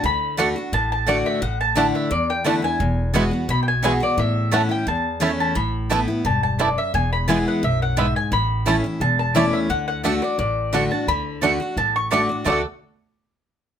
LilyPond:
<<
  \new Staff \with { instrumentName = "Mandolin" } { \time 4/4 \key d \major \tempo 4 = 174 b''2 a''8 a''8 d''8 e''8 | fis''8 a''8 fis''8 e''8 d''8 g''8 fis''8 gis''8~ | gis''2 b''16. g''32 gis''8 gis''8 d''8 | e''4 fis''8 g''8 a''4. a''8 |
b''2 a''8 a''8 d''8 e''8 | gis''8 b''8 gis''8 fis''8 e''8 fis''8 e''8 gis''8 | b''2 a''8 a''8 d''8 e''8 | fis''8 fis''8 e''8 d''8 d''4. a''8 |
b''2 a''8 cis'''8 d'''8. r16 | d'''8 r2. r8 | }
  \new Staff \with { instrumentName = "Mandolin" } { \time 4/4 \key d \major r4 <a fis' d'' fis''>16 r4. r16 <a fis' d'' fis''>16 r8. | r4 <a e' d'' a''>16 r4. r16 <a e' d'' a''>16 r8. | r4 <b fis' e'' gis''>16 r4. r16 <b fis' e'' gis''>16 r8. | r4 <a e' cis'' a''>16 r4. r16 <a e' cis'' a''>16 r8. |
r4 <a e' b' a''>16 r4. r16 <a e' b' a''>16 r8. | r4 <b e' b' gis''>16 r4. r16 <b e' b' gis''>16 r8. | r4 <a e' cis'' a''>16 r4. r16 <a e' cis'' a''>16 r8. | r4 <a fis' d'' fis''>16 r4. r16 <a fis' d'' fis''>16 r8. |
r4 <a fis' d'' fis''>16 r4. r16 <a fis' d'' fis''>16 r8. | <a fis' d'' fis''>8 r2. r8 | }
  \new Staff \with { instrumentName = "Five-string banjo" } { \time 4/4 \key d \major r4 <a d'>8 r4. <a d'>8 r8 | r4 <a d'>8 r4. <a d'>8 r8 | r4 <gis b e'>8 r4. <gis b e'>8 r8 | r4 <a cis' e'>8 r4. <a cis' e'>8 r8 |
r4 <a b e'>8 r4. <a b e'>8 r8 | r4 <gis b e'>8 r4. <gis b e'>8 r8 | r4 <a cis' e'>8 r4. <a cis' e'>8 r8 | r4 <a d'>8 r4. <a d'>8 r8 |
r4 <a d'>8 r4. <a d'>8 r8 | <a d' fis' a'>8 r2. r8 | }
  \new Staff \with { instrumentName = "Steel-string acoustic guitar" } { \time 4/4 \key d \major << { r4 <d a d' fis'>8 <d' fis'>8 r4 <d a d' fis'>4 | r4 <d a d' e'>4 r4 <d a d' e'>8 <d' e'>8 | r4 <e gis b fis'>8 <b fis'>8 r4 <e gis b fis'>8 <b fis'>8 | r4 <e a cis' e'>8 <cis' e'>8 r4 <e a cis' e'>4 |
r4 <e a b e'>8 <b e'>8 r2 | r4 <e gis b e'>4 r2 | r4 <e a cis' e'>8 <cis' e'>8 r4 <e a cis' e'>4 | r4 <d a d' fis'>8 <d' fis'>8 r4 <d a d' fis'>8 <d' fis'>8 |
r4 <d a d' fis'>8 <d' fis'>8 r4 <d a d' fis'>8 <d' fis'>8 | <d a d' fis'>8 r2. r8 | } \\ { d2 a,2 | a,2 e,2 | e,2 b,2 | a,2 e,2 |
a,2 g,4 fis,4 | e,2 fis,4 gis,4 | a,2 e,2 | d2 a,2 |
d2 a,2 | r1 | } >> }
  \new Staff \with { instrumentName = "Upright bass" } { \clef bass \time 4/4 \key d \major d,2 a,,2 | a,,2 e,2 | e,,2 b,,2 | a,,2 e,2 |
a,,2 e,,2 | e,,2 b,,2 | a,,2 e,,2 | d,2 a,,2 |
d,2 a,,2 | d,8 r2. r8 | }
>>